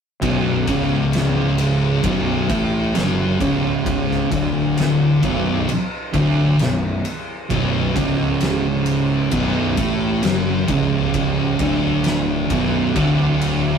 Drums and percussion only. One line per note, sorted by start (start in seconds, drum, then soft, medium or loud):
0.22 kick loud
0.22 ride loud
0.67 kick loud
0.67 ride medium
1.13 snare loud
1.13 ride loud
1.58 ride medium
2.04 kick loud
2.04 ride loud
2.50 kick loud
2.50 ride medium
2.95 snare loud
2.95 ride loud
3.41 kick loud
3.41 ride medium
3.86 kick loud
3.86 ride loud
4.11 snare soft
4.32 kick loud
4.32 ride medium
4.78 snare loud
4.78 ride loud
5.23 kick loud
5.23 ride medium
5.69 ride loud
6.14 kick loud
6.14 ride medium
6.59 snare loud
6.59 ride loud
7.05 ride medium
7.50 kick loud
7.50 ride medium
7.96 kick loud
7.96 ride medium
8.41 snare loud
8.41 ride loud
8.86 ride medium
9.31 kick loud
9.31 ride loud
9.77 kick loud
9.77 ride medium
10.23 snare loud
10.23 ride loud
10.68 kick loud
10.68 ride medium
11.14 kick loud
11.14 ride loud
11.59 kick loud
11.59 ride medium
12.04 snare loud
12.04 ride loud
12.50 kick loud
12.50 ride medium
12.96 kick loud
12.96 ride loud
13.41 ride medium